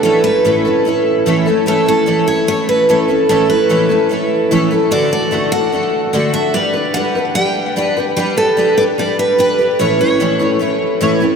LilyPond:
<<
  \new Staff \with { instrumentName = "Steel-string acoustic guitar" } { \time 4/4 \key a \mixolydian \tempo 4 = 148 a'8 b'4. r2 | a'8 a'4 cis''8 cis''8 b'8 a'4 | a'8 b'4. r2 | d''8 d''4 fis''2 e''8 |
d''4 fis''4 g''4. r8 | g'8 a'4 d''8 d''8 b'8 b'4 | cis''8 cis''4. r2 | }
  \new Staff \with { instrumentName = "Steel-string acoustic guitar" } { \time 4/4 \key a \mixolydian <a, e a cis' e' a'>8 <a cis' e' a'>8 <a, e a cis' e' a'>8 <a cis' e' a'>8 <a cis' e' a'>4 <a, e a cis' e' a'>8 <a cis' e' a'>8 | <a, e a cis' e' a'>8 <a cis' e' a'>8 <a, e a cis' e' a'>8 <a cis' e' a'>8 <a cis' e' a'>4 <a, e a cis' e' a'>8 <a cis' e' a'>8 | <a, e a cis' e' a'>8 <a cis' e' a'>8 <a, e a cis' e' a'>8 <a cis' e' a'>8 <a cis' e' a'>4 <a, e a cis' e' a'>8 <a cis' e' a'>8 | <d a d' fis' a'>8 <d' fis' a'>8 <d a d' fis' a'>8 <d' fis' a'>8 <a d' fis' a'>4 <d a d' fis' a'>8 <d' fis' a'>8 |
<g d' g' b'>8 <d' g' b'>8 <g d' g' b'>8 <d' g' b'>8 <g d' g' b'>4 <g d' g' b'>8 <d' g' b'>8 | <g d' g' b'>8 <d' g' b'>8 <g d' g' b'>8 <d' g' b'>8 <g d' g' b'>4 <g d' g' b'>8 <d' g' b'>8 | <a, e a cis' e' cis''>8 <a cis' e' cis''>8 <a, e a cis' e' cis''>8 <a cis' e' cis''>8 <a cis' e' cis''>4 <a, e a cis' e' cis''>8 <a cis' e' cis''>8 | }
>>